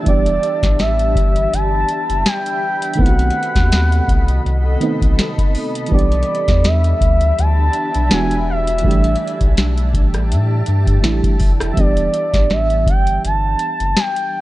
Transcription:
Already playing: ambient pad D4 G4 E5
0.03 sub bass E1, fm electric piano E3 G3 B3, ambient pad B5, kick, closed hi-hat
0.07 fm electric piano D4 G4, soft synth lead D5
0.26 closed hi-hat
0.43 closed hi-hat
0.63 sub bass A1, kick, snare, closed hi-hat
0.79 soft synth lead E5, snare, closed hi-hat
1.00 closed hi-hat
1.16 sub bass G1, kick, closed hi-hat
1.36 closed hi-hat
1.53 sub bass G1, soft synth lead A5, closed hi-hat
1.88 closed hi-hat
2.09 sub bass F#1, closed hi-hat
2.26 soft synth lead G5, snare, closed hi-hat
2.46 closed hi-hat
2.82 closed hi-hat
2.94 fm electric piano D#3 A3, closed hi-hat
2.99 sub bass B1, ambient pad C3 A4 D#5, fm electric piano B3 C4 E4, soft synth lead F#5, kick
3.06 fm electric piano F#4, closed hi-hat
3.19 closed hi-hat
3.30 closed hi-hat
3.43 closed hi-hat
3.55 sub bass D#2, kick, snare, closed hi-hat
3.72 snare, closed hi-hat
3.92 closed hi-hat
4.08 sub bass C2, kick, closed hi-hat
4.28 closed hi-hat
4.46 sub bass C2, closed hi-hat
4.80 fm electric piano D#3 A3 B3 C4 D#4, closed hi-hat
5.02 sub bass B1, kick, closed hi-hat
5.19 snare, closed hi-hat
5.38 kick, closed hi-hat
5.55 open hi-hat
5.75 closed hi-hat
5.87 fm electric piano E3 G3, closed hi-hat
5.91 sub bass B1, fm electric piano B3 D4 G4, ambient pad D4 G4 E5, soft synth lead D5, kick
5.99 closed hi-hat
6.12 closed hi-hat
6.23 closed hi-hat
6.35 closed hi-hat
6.48 sub bass E2, kick, snare, closed hi-hat
6.64 soft synth lead E5, snare, closed hi-hat
6.84 closed hi-hat
7.01 sub bass D2, kick, closed hi-hat
7.21 closed hi-hat
7.39 sub bass D2, soft synth lead A5, closed hi-hat
7.73 closed hi-hat
7.95 sub bass B1, closed hi-hat
8.10 sub bass E1, fm electric piano E3 G#3 B3 D4 F#4, soft synth lead G#5, snare, closed hi-hat
8.31 closed hi-hat
8.50 soft synth lead E5
8.67 closed hi-hat
8.79 fm electric piano E3, closed hi-hat
8.83 sub bass A1, fm electric piano G3 A3 D4, ambient pad G4 A5, kick
8.88 fm electric piano G4, closed hi-hat
9.04 closed hi-hat
9.16 closed hi-hat
9.27 closed hi-hat
9.41 sub bass B1, kick, closed hi-hat
9.57 snare, closed hi-hat
9.77 closed hi-hat
9.94 sub bass A1, kick, closed hi-hat
10.14 cross-stick, closed hi-hat
10.32 sub bass A2, closed hi-hat
10.66 sub bass G2, closed hi-hat
10.87 kick, closed hi-hat
11.02 sub bass A1, fm electric piano E3 G3 A3 D4 E4, snare, closed hi-hat
11.24 kick, closed hi-hat
11.40 sub bass F1, kick, open hi-hat
11.60 cross-stick, closed hi-hat
11.72 fm electric piano E3 G3, soft synth lead E5
11.77 sub bass E1, fm electric piano B3 D4 G4, soft synth lead D5, kick, closed hi-hat
11.97 closed hi-hat
12.14 closed hi-hat
12.34 sub bass A1, kick, snare, closed hi-hat
12.50 soft synth lead E5, snare, closed hi-hat
12.70 closed hi-hat
12.86 sub bass G1, soft synth lead G5, kick, closed hi-hat
13.07 closed hi-hat
13.24 sub bass G1, soft synth lead A5, closed hi-hat
13.59 closed hi-hat
13.80 sub bass F#1, closed hi-hat
13.97 soft synth lead G5, snare, closed hi-hat
14.17 closed hi-hat

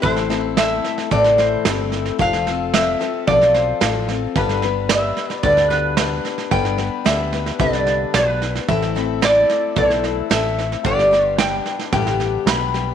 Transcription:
0.02 analog synth bass A1, steel-string acoustic guitar A2 E3 A3 C4 E4 A4, resonator guitar played with a steel bar C5, kick, snare
0.16 snare
0.30 steel-string acoustic guitar A3 C4 E4 A4, snare
0.57 steel-string acoustic guitar A3 C4 E4 A4, resonator guitar played with a steel bar E5, snare, hi-hat pedal
0.84 snare
0.98 snare
1.11 analog synth bass A1, steel-string acoustic guitar A2 E3 A3 C4 E4 A4, resonator guitar played with a steel bar D5, kick, snare
1.24 snare
1.38 resonator guitar played with a steel bar C5, snare
1.65 analog synth bass G1, steel-string acoustic guitar A3 C4 E4 A4, snare, hi-hat pedal
1.92 snare
2.06 snare
2.19 analog synth bass F1, steel-string acoustic guitar F3 C4 F4 A4, resonator guitar played with a steel bar F5, kick, snare
2.33 snare
2.47 steel-string acoustic guitar C4 F4 A4, snare
2.74 steel-string acoustic guitar F3 C4 F4 A4, resonator guitar played with a steel bar E5, snare, hi-hat pedal
2.99 steel-string acoustic guitar C4 F4 A4, snare
3.27 analog synth bass B1, steel-string acoustic guitar F3 C4 F4 A4, resonator guitar played with a steel bar D5, kick, snare
3.42 snare
3.54 resonator guitar played with a steel bar C5, snare
3.81 analog synth bass A1, steel-string acoustic guitar F3 C4 F4 A4, snare, hi-hat pedal
4.08 steel-string acoustic guitar C4 F4 A4, snare
4.35 analog synth bass G1, steel-string acoustic guitar G2 D3 G3 B3 D4 B4, resonator guitar played with a steel bar B4, kick, snare
4.49 snare
4.62 steel-string acoustic guitar G3 B3 D4 B4, snare
4.89 steel-string acoustic guitar G3 B3 D4 B4, resonator guitar played with a steel bar E5, snare, hi-hat pedal
5.17 snare
5.30 resonator guitar played with a steel bar D5, snare
5.43 analog synth bass D2, steel-string acoustic guitar G2 D3 G3 B3 D4 B4, resonator guitar played with a steel bar D5, kick, snare
5.57 snare
5.70 resonator guitar played with a steel bar B4, snare
5.97 steel-string acoustic guitar G3 B3 D4 B4, snare, hi-hat pedal
6.25 snare
6.38 snare
6.51 analog synth bass G1, steel-string acoustic guitar G2 D3 G3 B3 D4 B4, resonator guitar played with a steel bar G5, kick, snare
6.65 snare
6.78 steel-string acoustic guitar G3 B3 D4 B4, snare
7.05 analog synth bass D2, steel-string acoustic guitar G3 B3 D4 B4, resonator guitar played with a steel bar E5, snare, hi-hat pedal
7.33 steel-string acoustic guitar G3 B3 D4 B4, snare
7.46 snare
7.59 analog synth bass C2, steel-string acoustic guitar G2 D3 G3 B3 D4 B4, resonator guitar played with a steel bar D5, kick, snare
7.73 snare
7.87 snare
8.14 analog synth bass B1, steel-string acoustic guitar G3 B3 D4 B4, resonator guitar played with a steel bar B4, snare, hi-hat pedal
8.42 snare
8.55 snare
8.68 analog synth bass A1, steel-string acoustic guitar A2 E3 A3 C4 E4 A4, resonator guitar played with a steel bar E5, kick, snare
8.82 snare
8.95 steel-string acoustic guitar A3 C4 E4 A4, snare
9.21 steel-string acoustic guitar A3 C4 E4 A4, resonator guitar played with a steel bar D5, snare, hi-hat pedal
9.50 snare
9.76 analog synth bass B1, steel-string acoustic guitar A2 E3 A3 C4 E4 A4, resonator guitar played with a steel bar C5, kick, snare
9.90 snare
10.04 snare
10.30 analog synth bass A1, steel-string acoustic guitar A3 C4 E4 A4, resonator guitar played with a steel bar E5, snare, hi-hat pedal
10.58 snare
10.72 snare
10.84 analog synth bass G1, steel-string acoustic guitar G2 D3 G3 B3 D4 G4, resonator guitar played with a steel bar D5, kick, snare
10.99 snare
11.11 steel-string acoustic guitar G3 B3 D4 G4, snare
11.38 steel-string acoustic guitar G3 B3 D4 G4, resonator guitar played with a steel bar G5, snare, hi-hat pedal
11.66 snare
11.79 snare
11.92 analog synth bass A1, steel-string acoustic guitar G2 D3 G3 B3 D4 G4, resonator guitar played with a steel bar G5, kick, snare
12.07 snare
12.20 snare
12.46 analog synth bass B1, steel-string acoustic guitar G3 B3 D4 G4, resonator guitar played with a steel bar B5, snare, hi-hat pedal
12.74 steel-string acoustic guitar G3 B3 D4 G4, snare

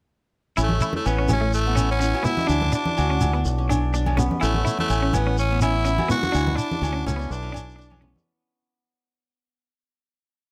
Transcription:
0.57 fingered electric bass A1, qanun C#4, clean electric guitar E4, low agogo, shekere
0.63 tenor saxophone A3
0.69 high conga
0.81 qanun E4, clean electric guitar E4, shekere
0.93 tenor saxophone A3, high conga
1.05 fingered electric bass A1, tenor saxophone B3, qanun C#4, low agogo, shekere
1.18 clean electric guitar C#4
1.28 fingered electric bass A1, qanun C#4, high conga, low conga, low agogo, shekere
1.32 tenor saxophone C#4
1.41 clean electric guitar A3
1.53 tenor saxophone A3, shekere
1.66 qanun B3
1.76 clean electric guitar C#4, qanun C#4, low agogo, shekere
1.91 tenor saxophone C#4
2.00 clean electric guitar C#4, qanun E4, shekere
2.14 qanun F#4, low agogo
2.23 clean electric guitar B3, tenor saxophone E4, qanun E4, low conga, shekere
2.37 qanun F#4, high conga, shekere
2.47 fingered electric bass D2, clean electric guitar D4, tenor saxophone D4, qanun E4, low agogo, shekere
2.62 high conga
2.72 clean electric guitar D4, qanun D4, tenor saxophone D4, shekere
2.86 high conga
2.98 fingered electric bass D2, qanun F#4, low agogo, shekere
3.10 clean electric guitar C#4
3.21 fingered electric bass D2, high conga, low conga, low agogo, shekere
3.33 clean electric guitar B3, qanun D4
3.45 fingered electric bass B1, shekere
3.58 qanun C#4
3.69 clean electric guitar D4, qanun D4, low agogo, shekere
3.94 clean electric guitar D4, qanun D4, shekere
4.06 qanun C#4, high conga, low agogo
4.17 qanun B3, clean electric guitar C#4, low conga, shekere
4.31 high conga
4.40 fingered electric bass A1, tenor saxophone A3, qanun C#4, clean electric guitar E4, low agogo, shekere
4.54 high conga
4.65 clean electric guitar E4, qanun E4, shekere
4.79 tenor saxophone A3, high conga
4.89 fingered electric bass A1, qanun C#4, low agogo, shekere
5.02 clean electric guitar C#4
5.13 fingered electric bass A1, tenor saxophone B3, qanun C#4, high conga, low conga, low agogo, shekere
5.27 clean electric guitar C#4
5.38 tenor saxophone C#4, shekere
5.51 qanun B3
5.61 clean electric guitar C#4, qanun C#4, tenor saxophone E4, low agogo, shekere
5.85 clean electric guitar C#4, qanun E4, shekere
5.98 qanun F#4, high conga, low agogo
6.08 clean electric guitar B3, qanun E4, tenor saxophone F#4, low conga, shekere
6.22 qanun F#4, high conga, shekere
6.32 fingered electric bass D2, clean electric guitar D4, qanun E4, low agogo, shekere
6.47 high conga
6.56 clean electric guitar D4, qanun D4, tenor saxophone D4, shekere
6.71 high conga, shekere
6.82 fingered electric bass D2, qanun F#4, low conga, low agogo, shekere
6.93 clean electric guitar C#4
7.06 fingered electric bass C#2, tenor saxophone C#4, qanun E4, high conga, low conga, low agogo, shekere
7.16 clean electric guitar B3, qanun D4
7.21 shekere
7.31 fingered electric bass B1, tenor saxophone D4, shekere
7.43 qanun C#4
7.52 clean electric guitar D4, qanun D4, low agogo, shekere
7.70 shekere
7.76 clean electric guitar D4, qanun D4
7.81 shekere
7.90 qanun C#4, high conga, low agogo
8.01 qanun B3, clean electric guitar C#4, low conga
8.16 high conga, shekere

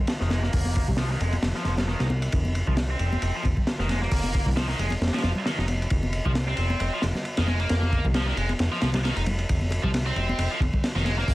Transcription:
0.07 snare, ride
0.20 analog synth bass F1, distorted electric guitar D#3, snare
0.30 distorted electric guitar G#3, snare, ride, high conga
0.43 distorted electric guitar A#3, snare
0.53 analog synth bass F1, kick, open hi-hat
0.65 high conga
0.76 kick, ride
0.88 analog synth bass C2, kick, low conga
0.97 distorted electric guitar F3, snare, ride, high conga
1.11 distorted electric guitar D#3, snare
1.21 analog synth bass F1, distorted electric guitar G#3, ride
1.32 ride, high conga
1.43 analog synth bass F1, snare, ride
1.54 distorted electric guitar F3, snare
1.65 analog synth bass F1, distorted electric guitar F3, snare, ride, high conga
1.77 snare, ride, low conga
1.88 distorted electric guitar D#3, snare
2.00 analog synth bass C2, distorted electric guitar D#4, snare, ride
2.10 high conga
2.22 ride
2.32 analog synth bass F1, kick, ride
2.45 high conga
2.55 ride
2.67 analog synth bass C2, distorted electric guitar F3, kick, low conga
2.77 snare, ride, high conga
2.90 distorted electric guitar C4
2.99 analog synth bass F1, ride
3.13 high conga
3.22 analog synth bass F1, ride
3.35 distorted electric guitar F3
3.43 analog synth bass F1, kick, ride, high conga
3.57 kick, low conga
3.67 snare, ride
3.79 analog synth bass F1, distorted electric guitar D#3, snare
3.89 distorted electric guitar G#3, snare, ride, high conga
4.02 distorted electric guitar A#3, snare
4.11 analog synth bass F1, kick, open hi-hat
4.24 high conga
4.34 kick, ride
4.46 analog synth bass C2, kick, low conga
4.57 distorted electric guitar F3, snare, ride, high conga
4.69 distorted electric guitar D#3, snare
4.79 analog synth bass F1, distorted electric guitar G#3, ride
4.90 ride, high conga
5.01 analog synth bass F1, snare, ride
5.08 snare, ride
5.14 distorted electric guitar F3, snare, ride
5.18 snare, ride
5.23 analog synth bass F1, distorted electric guitar F3, snare, ride, high conga
5.35 low conga
5.46 distorted electric guitar D#3, snare, ride
5.58 analog synth bass F1, distorted electric guitar D#4, snare
5.68 ride, high conga
5.82 ride
5.90 analog synth bass F1, kick, ride
6.03 high conga
6.13 ride
6.26 analog synth bass C2, distorted electric guitar F3, kick, low conga
6.35 snare, ride, high conga
6.48 distorted electric guitar C4
6.57 analog synth bass F1, ride
6.70 high conga
6.80 analog synth bass F1, ride
6.93 distorted electric guitar F3
7.02 analog synth bass F1, snare, ride, high conga
7.15 snare, low conga
7.25 ride
7.37 analog synth bass F1, distorted electric guitar D#3, snare, ride
7.47 distorted electric guitar G#3, snare, high conga
7.60 distorted electric guitar A#3, ride
7.69 analog synth bass F1, snare, ride
7.83 high conga
7.92 kick, ride
8.04 analog synth bass C2, kick, low conga
8.14 distorted electric guitar F3, snare, ride, high conga
8.28 distorted electric guitar D#3, snare
8.37 analog synth bass F1, distorted electric guitar G#3, ride
8.49 ride, high conga
8.59 analog synth bass F1, snare, ride
8.72 distorted electric guitar F3, snare
8.82 analog synth bass C2, distorted electric guitar F3, snare, ride, high conga
8.94 snare, ride, low conga
9.04 distorted electric guitar D#3, snare, ride
9.16 analog synth bass F1, distorted electric guitar D#4, ride
9.26 ride, high conga, low conga
9.38 ride
9.49 analog synth bass F1, kick, ride
9.61 high conga
9.70 ride, high bongo
9.84 analog synth bass C2, distorted electric guitar F3, kick, low conga
9.94 snare, ride, high conga
10.06 distorted electric guitar C4
10.16 analog synth bass F1, ride
10.29 high conga
10.38 analog synth bass F1, ride
10.51 distorted electric guitar F3
10.60 analog synth bass F1, kick, ride, high conga
10.73 kick, low conga
10.84 snare, ride
10.95 analog synth bass F1, distorted electric guitar D#3, snare
11.05 distorted electric guitar G#3, snare, ride, high conga
11.18 distorted electric guitar A#3, snare
11.28 analog synth bass F1, kick, open hi-hat

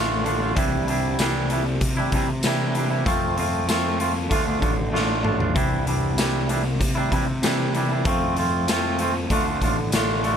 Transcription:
Already playing: picked electric bass A1, clean electric guitar D3 A3 D4 F4
0.24 clean electric guitar D3 A3 D4 F4, closed hi-hat
0.40 clean electric guitar A3 D4 F4
0.55 picked electric bass C2, clean electric guitar C3 E3 G3 D4 E4, kick, closed hi-hat
0.87 clean electric guitar E3 G3 D4 E4, closed hi-hat
1.19 clean electric guitar C3 E3 G3 D4 E4, snare, closed hi-hat, tambourine
1.50 clean electric guitar E3 G3 D4 E4, closed hi-hat
1.66 muted clean electric guitar stroke
1.81 picked electric bass C3, kick, closed hi-hat
1.97 clean electric guitar G3 D4 E4
2.12 picked electric bass C3, clean electric guitar E3 G3 D4, kick, closed hi-hat
2.16 clean electric guitar E4
2.30 muted clean electric guitar stroke
2.43 clean electric guitar C3 E3 G3 D4 E4, snare, closed hi-hat, tambourine
2.74 clean electric guitar E3 G3 D4 E4, closed hi-hat
2.90 clean electric guitar G3 D4 E4
3.05 picked electric bass F2, clean electric guitar F3 A3 C4 F4, kick, closed hi-hat
3.37 clean electric guitar F3 A3 C4 F4, closed hi-hat
3.67 clean electric guitar F3 A3 C4 F4, snare, closed hi-hat, tambourine
3.99 clean electric guitar F3 A3 C4 F4, closed hi-hat
4.15 muted clean electric guitar stroke
4.29 picked electric bass D2, clean electric guitar D3 A3 D4 F4, kick, closed hi-hat
4.45 clean electric guitar A3 D4 F4
4.60 picked electric bass A1, clean electric guitar D3 A3 D4 F4, kick, closed hi-hat
4.76 muted clean electric guitar stroke
4.91 clean electric guitar D3 A3 D4 F4, snare
5.22 clean electric guitar D3 A3 D4 F4, mid tom
5.38 clean electric guitar A3 D4 F4, floor tom
5.54 picked electric bass C2, clean electric guitar C3 E3 G3 D4 E4, kick, closed hi-hat
5.85 clean electric guitar E3 G3 D4 E4, closed hi-hat
6.17 clean electric guitar C3 E3 G3 D4 E4, snare, closed hi-hat, tambourine
6.49 clean electric guitar E3 G3 D4 E4, closed hi-hat
6.64 muted clean electric guitar stroke
6.80 picked electric bass C3, kick, closed hi-hat
6.95 clean electric guitar G3 D4 E4
7.11 picked electric bass C3, clean electric guitar E3 G3 D4 E4, kick, closed hi-hat
7.27 muted clean electric guitar stroke
7.42 clean electric guitar C3 E3 G3 D4 E4, snare, closed hi-hat, tambourine
7.74 clean electric guitar E3 G3 D4 E4, closed hi-hat
7.90 clean electric guitar G3 D4 E4
8.05 picked electric bass F2, clean electric guitar F3 A3 C4 F4, kick, closed hi-hat
8.36 clean electric guitar F3 A3 C4 F4, closed hi-hat
8.68 clean electric guitar F3 A3 C4 F4, snare, closed hi-hat, tambourine
8.99 clean electric guitar F3 A3 C4 F4, closed hi-hat
9.16 muted clean electric guitar stroke
9.30 picked electric bass D2, clean electric guitar D3 A3 D4 F4, kick, closed hi-hat
9.46 clean electric guitar A3 D4 F4
9.62 picked electric bass A1, clean electric guitar D3 A3 D4 F4, kick, closed hi-hat
9.78 muted clean electric guitar stroke
9.92 clean electric guitar D3 A3 D4 F4, snare, closed hi-hat, tambourine
10.23 clean electric guitar D3 A3 D4 F4, closed hi-hat

